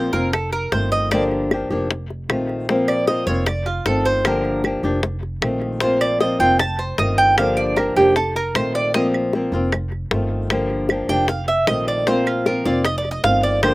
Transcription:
Already playing: F3 A#3 C4 F4 C5
0.13 F1 A#3 C4 F4 A#4, high bongo
0.33 A4, muted nylon-string guitar stroke, high bongo, claves
0.52 A#4, high bongo
0.72 G1 D#3 A3 C4 F4 C5, high bongo, low bongo
0.92 D#5
1.11 D3 F3 A#3 D4 G4 D5, high bongo, claves
1.31 high bongo
1.51 F3 A#3 D4 G4, high bongo, claves
1.70 F1 F3 A#3 D4 G4
1.90 muted nylon-string guitar stroke, high bongo
2.10 high bongo
2.29 A#1 D#3 A3 C4 F4, high bongo, low bongo, claves
2.49 high bongo
2.69 F3 A#3 C4 F4, high bongo
2.88 D5, high bongo, claves
3.07 F3 A#3 C4 F4 D#5, high bongo
3.27 F1 A#3 C4 F4 C#5, high bongo
3.46 D5, muted nylon-string guitar stroke, high bongo, claves
3.66 F4, high bongo
3.86 G1 D#3 A3 C4 F4 A4, high bongo, low bongo
4.05 C5
4.25 D3 F3 A#3 D4 G4 A#4, high bongo, claves
4.45 high bongo
4.64 F3 A#3 D4 G4, high bongo, claves
4.83 F1 F3 A#3 D4 G4
5.03 muted nylon-string guitar stroke, high bongo
5.23 high bongo
5.42 A#1 D#3 A3 C4 F4, high bongo, low bongo, claves
5.61 high bongo
5.80 F3 A#3 C4 F4 C5, high bongo
6.00 D5, high bongo, claves
6.20 F3 A#3 C4 F4 D#5, high bongo
6.39 F1 A#3 C4 F4 G5, high bongo
6.59 A5, muted nylon-string guitar stroke, high bongo, claves
6.79 C5, high bongo
6.98 G1 D#3 A3 C4 F4 D#5, high bongo, low bongo
7.18 G5
7.38 D3 F3 A#3 D4 G4 F5, high bongo, claves
7.57 D5, high bongo
7.76 F3 A#3 D4 G4 A#4, high bongo, claves
7.96 F1 F3 A#3 D4 G4
8.16 A4, muted nylon-string guitar stroke, high bongo
8.36 A#4, high bongo
8.55 A#1 D#3 A3 C4 F4 C5, high bongo, low bongo, claves
8.75 D5, high bongo
8.94 F3 A#3 C4 F4 D#5, high bongo
9.14 high bongo, claves
9.33 F3 A#3 C4 F4, high bongo
9.52 F1 A#3 C4 F4, high bongo
9.72 muted nylon-string guitar stroke, high bongo, claves
9.92 high bongo
10.11 G1 D#3 A3 C4 F4, high bongo, low bongo
10.50 D3 F3 A#3 D4 G4, high bongo, claves
10.70 high bongo
10.89 F3 A#3 D4 G4, high bongo, claves
11.09 F1 F3 A#3 D4 G4 G5
11.28 F5, muted nylon-string guitar stroke, high bongo
11.48 E5, high bongo
11.67 A#1 D#3 A3 C4 F4 D#5, high bongo, low bongo, claves
11.87 D5, high bongo
12.07 F3 A#3 C4 F4 C5, high bongo
12.27 F4, high bongo, claves
12.46 F3 A#3 C4 F4 A#4, high bongo
12.65 F1 A#3 C4 F4 D5, high bongo
12.85 D#5, muted nylon-string guitar stroke, high bongo, claves
12.98 D5
13.05 high bongo
13.11 D#5
13.24 G1 D#3 A3 C4 F4 F5, high bongo, low bongo
13.43 D5
13.63 D3 F3 A#3 D4 G4 C5, high bongo, claves

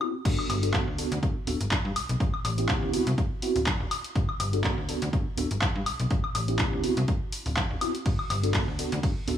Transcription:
0.01 B3 C4 E4 F#4, high woodblock
0.25 G1 B3 D4 F#4 A4, kick, closed hi-hat, crash
0.39 high woodblock
0.50 G1, open hi-hat, high woodblock
0.62 B3 D4 F#4 A4, closed hi-hat
0.74 B3 D4 F#4 A4, kick, clap, closed hi-hat
0.88 D2
0.98 D2 B3 D4 F#4 A4, open hi-hat
1.12 D2, closed hi-hat
1.23 B3 D4 F#4 A4, kick, closed hi-hat
1.47 D1 B3 D4 F#4 A4, open hi-hat
1.61 G1, closed hi-hat
1.71 kick, clap, closed hi-hat
1.85 G2
1.96 B1, open hi-hat, high woodblock
2.09 B1, closed hi-hat
2.20 A1, kick, closed hi-hat
2.34 high woodblock
2.45 A1, open hi-hat, high woodblock
2.58 B3 C#4 E4 G4, closed hi-hat
2.69 B3 C#4 E4 G4, kick, clap, closed hi-hat
2.83 D2
2.93 C2 B3 C4 E4 F#4, open hi-hat
3.07 C2, closed hi-hat
3.18 kick, closed hi-hat
3.42 B3 C4 E4 F#4, open hi-hat
3.56 D1, open hi-hat
3.66 kick, clap, closed hi-hat
3.80 D1
3.91 open hi-hat, high woodblock
4.04 closed hi-hat
4.16 G1, kick, closed hi-hat
4.29 high woodblock
4.40 G1, open hi-hat, high woodblock
4.53 B3 D4 F#4 A4, closed hi-hat
4.64 B3 F#4, kick, clap, closed hi-hat
4.78 D2
4.88 D2 B3 D4 F#4 A4, open hi-hat
5.02 D2, closed hi-hat
5.13 B3 D4 F#4 A4, kick, closed hi-hat
5.37 D1 B3 D4 F#4 A4, open hi-hat
5.51 G1, closed hi-hat
5.62 kick, clap, closed hi-hat
5.75 G2
5.86 B1, open hi-hat, high woodblock
6.00 B1, closed hi-hat
6.11 A1, kick, closed hi-hat
6.24 high woodblock
6.35 A1, open hi-hat, high woodblock
6.48 B3 C#4 E4 G4, closed hi-hat
6.59 B3 C#4 E4 G4, kick, clap, closed hi-hat
6.73 D2
6.84 C2 B3 C4 E4 F#4, open hi-hat
6.97 C2, closed hi-hat
7.08 kick, closed hi-hat
7.32 open hi-hat
7.46 D1, open hi-hat
7.57 kick, clap, closed hi-hat
7.70 D1
7.81 B3 C4 E4 F#4, open hi-hat, high woodblock
7.95 closed hi-hat
8.06 G1, kick, closed hi-hat, ride
8.19 high woodblock
8.30 G1, open hi-hat, high woodblock
8.43 B3 D4 F#4 A4, closed hi-hat
8.54 B3 A4, kick, clap, closed hi-hat, ride
8.68 D2
8.79 D2 B3 D4 F#4 A4, open hi-hat
8.92 D2, closed hi-hat
9.03 B3 D4 F#4 A4, kick, closed hi-hat, ride
9.27 D1 B3 D4 F#4 A4, open hi-hat

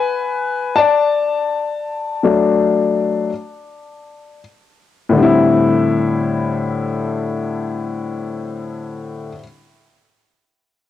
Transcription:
Already playing: B4 G#5
0.76 D5 A5
2.23 F#3 A3 D4
5.10 A2 D3
5.16 G3 C4
5.23 E4

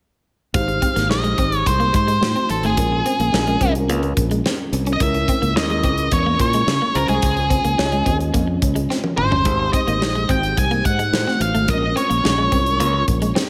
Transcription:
0.54 G#1 G#3 D#4 G4 C5 F5, kick, closed hi-hat
0.68 muted clean electric guitar stroke, closed hi-hat
0.82 C4, kick, closed hi-hat
0.96 G#1 A#3, snare, closed hi-hat
1.10 A#1 G#3 D#4 G4 C5 D#5, muted clean electric guitar stroke, snare
1.24 G#3, closed hi-hat
1.38 G#1 C4, kick, closed hi-hat
1.52 C#5, closed hi-hat
1.66 C2 C5, kick, closed hi-hat
1.80 A#3, closed hi-hat
1.93 G#2 C5, muted clean electric guitar stroke, kick, closed hi-hat
2.08 G#3, closed hi-hat
2.21 A2 A3 D#4 F#4 C5, snare
2.36 C4, closed hi-hat
2.50 A1 A4, muted clean electric guitar stroke, closed hi-hat
2.63 G#1 A3 G#4, closed hi-hat
2.77 A#1 G#3 C#4 F4 A#4, kick, closed hi-hat
2.92 muted clean electric guitar stroke
3.06 C4, closed hi-hat
3.19 A#1 A#3, closed hi-hat
3.32 A#1 G#3 C4 F4 A#4, muted clean electric guitar stroke, snare
3.39 C#4
3.47 G#3, closed hi-hat
3.61 C2 C4, kick, closed hi-hat
3.75 closed hi-hat
3.89 C#2 A#3, closed hi-hat
4.03 muted clean electric guitar stroke, closed hi-hat
4.17 A#1, kick, closed hi-hat
4.31 G#3, closed hi-hat
4.46 C4, snare
4.72 C2, muted clean electric guitar stroke, closed hi-hat
4.86 C#4, closed hi-hat
4.93 D#5
5.00 C#2 G#3 C#4 E4 A#4 E5, kick, closed hi-hat
5.14 muted clean electric guitar stroke, closed hi-hat
5.28 C4, kick, closed hi-hat
5.42 C#2 A#3, closed hi-hat
5.56 D#2 G#3 C#4 E4 A#4 D#5, muted clean electric guitar stroke, snare
5.70 G#3, closed hi-hat
5.83 C#2 C4, kick, closed hi-hat
5.98 closed hi-hat
6.11 E2 C#5, kick, closed hi-hat
6.26 A#3
6.39 A#2 C#5, muted clean electric guitar stroke, kick, closed hi-hat
6.53 G#3, closed hi-hat
6.67 C#3, snare
6.82 A#3
6.94 C#2 G#3 C#4 F4 A#4 C5, muted clean electric guitar stroke, closed hi-hat
7.08 C2 G#3 G#4, closed hi-hat
7.22 C#2, kick, closed hi-hat
7.37 muted clean electric guitar stroke, closed hi-hat
7.50 C4, kick, closed hi-hat
7.65 C#2 A#3, closed hi-hat
7.78 C#2 G#3 C#4 F4 C#5, muted clean electric guitar stroke, snare
7.86 D#5
7.92 G#3, closed hi-hat
8.06 D#2 C4, kick, closed hi-hat
8.20 closed hi-hat
8.34 F2 A#3, kick, closed hi-hat
8.47 muted clean electric guitar stroke
8.62 C#2, kick, closed hi-hat
8.75 G#3, closed hi-hat
8.90 C4, snare
9.04 high tom
9.17 G1 C5, muted clean electric guitar stroke, mid tom
9.32 C#4, floor tom
9.44 G#1 G#3 D#4 G4 C5, kick, closed hi-hat
9.59 muted clean electric guitar stroke
9.73 C4 D#5, kick, closed hi-hat
9.87 G#1 A#3, closed hi-hat
10.01 A#1 G#3 D#4 G4 C5, muted clean electric guitar stroke, snare
10.15 G#3, closed hi-hat
10.29 G#1 C4 G5, kick, closed hi-hat
10.43 closed hi-hat
10.57 C2 G#5, kick, closed hi-hat
10.71 A#3, closed hi-hat
10.85 G#2 F#5, muted clean electric guitar stroke, kick, closed hi-hat
10.99 G#3, closed hi-hat
11.12 A2 A3 D#4 F#4 C5, snare
11.27 C4, snare
11.40 A1 F5, muted clean electric guitar stroke, closed hi-hat
11.54 G#1 A3, closed hi-hat
11.68 A#1 G#3 C#4 F4 A#4 D#5, kick, closed hi-hat
11.82 muted clean electric guitar stroke
11.96 C4 C#5, closed hi-hat
12.10 A#1 A#3, closed hi-hat
12.23 A#1 G#3 C#4 F4 C#5, muted clean electric guitar stroke, snare
12.38 G#3
12.52 C2 C4, kick, closed hi-hat
12.66 closed hi-hat
12.80 C#2 A#3, closed hi-hat
12.94 muted clean electric guitar stroke
13.08 A#1, kick, closed hi-hat
13.22 G#3, closed hi-hat
13.35 C4, snare

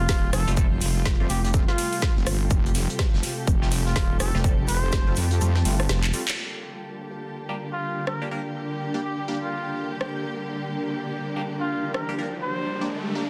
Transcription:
Already playing: C3 G3 A3 F4 A4 G5
0.00 F4
0.09 D#1, kick, snare, open hi-hat, shaker
0.33 F1 A4, cross-stick, open hi-hat, shaker
0.47 F1 G3 A3 C4 F4, closed hi-hat
0.57 G3 A3 C4 A4, kick, shaker
0.81 F1, open hi-hat, shaker
1.06 kick, snare, shaker
1.20 F1 G3 A3 C4 F4
1.30 F1 G4, open hi-hat, shaker
1.44 G4, closed hi-hat
1.54 G3 A3 C4 F4, kick, shaker
1.68 F4, snare
1.78 open hi-hat, shaker
1.93 open hi-hat
2.02 kick, snare, shaker
2.16 F1, snare
2.27 G1, cross-stick, open hi-hat, shaker
2.50 F1 G4, kick, shaker
2.66 closed hi-hat
2.75 snare, open hi-hat, shaker
2.90 closed hi-hat
2.99 kick, snare, shaker
3.04 A5
3.14 F1, snare
3.23 snare, open hi-hat, shaker
3.47 F1, kick, shaker
3.62 G3 A3 C4 F4, snare
3.71 snare, open hi-hat, shaker
3.86 F4, snare
3.96 D#1, kick, snare, open hi-hat, shaker
4.20 F1 A4, cross-stick, open hi-hat, shaker
4.34 F1 G3 A3 C4 F4, snare
4.44 G3 A3 C4 A4, kick, shaker
4.68 F1 C5, open hi-hat, shaker
4.92 kick, snare, shaker
5.07 F1 G3 A3 C4 F4
5.16 F2, open hi-hat, shaker
5.31 closed hi-hat
5.41 F2 G3 A3 C4 F4, shaker
5.55 snare
5.65 G1 G3 A3 C4 F4, open hi-hat, shaker
5.80 cross-stick, open hi-hat
5.89 F1, snare, shaker
6.04 clap
6.13 G3 A3 C4 F4, open hi-hat, shaker
6.28 clap
6.38 D3 G3 A#3 D4 G4
6.51 closed hi-hat
6.61 A#4, snare
6.76 closed hi-hat
7.01 snare
7.10 snare
7.34 G5, shaker
7.49 G3 A#3 D4 G4, snare
7.73 F4
8.07 A#4, cross-stick
8.22 G3 A#3 D4 G4
8.31 G3 A#3 D4 A#4
8.94 G3 A#3 D4 G4
9.04 G4
9.18 G4, closed hi-hat
9.28 G3 A#3 D4 G4
9.42 F4
9.91 snare
10.01 cross-stick
10.25 riser
10.39 closed hi-hat
10.49 snare
10.64 closed hi-hat
10.73 shaker
10.88 snare
10.98 snare, shaker
11.21 shaker
11.36 G3 A#3 D4 G4 A5, snare
11.45 shaker
11.60 F4
11.70 shaker
11.94 A#4, cross-stick
12.09 G3 A#3 D4 G4, closed hi-hat
12.18 G3 A#3 D4 A#4
12.42 C5, shaker
12.67 shaker
12.81 G3 A#3 D4 G4
13.05 closed hi-hat
13.15 G3 A#3 D4 G4

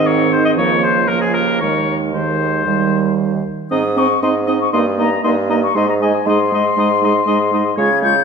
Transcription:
Already playing: G#2 D#3 C4
0.05 A#4 C#5
0.30 G#4 C5
0.43 C5 D#5
0.57 C#2 F3 A#3 A#4 C#5
0.83 G#4 C5
1.08 F3 A#3 F4 A#4
1.21 F4 G#4
1.34 G4 A#4
1.60 D#2 D#3 G#3 A#4 C#5
2.14 D#3 G#3 G#4 C5
2.66 D#2 D#3 G3
3.71 G#2 C4 D#4 D#5 D#6
3.97 C4 D#4 D#5 C#6
4.23 G#2 C4 D#4 D#5 C6
4.47 C4 D#4 D#5 D#6
4.61 C#6
4.72 G2 A#3 D#4 D#5 C6
4.98 A#3 D#4 D#5 A#5
5.24 G2 A#3 D#4 D#5 C6
5.50 A#3 D#4 D#5 A#5
5.63 C#6
5.75 G#2 G#3 D#4 D#5 C6
5.89 A#5
6.00 G#3 D#4 D#5 G#5
6.26 G#2 G#3 D#4 D#5 C6
6.52 G#3 D#4 D#5
6.77 G#2 G#3 D#4 D#5
7.02 G#3 D#4 D#5
7.26 G#2 G#3 D#4 D#5
7.51 G#3 D#4 D#5
7.77 C#3 G#3 F4 C#5 G#6
8.02 G#3 F4 C#5 G6

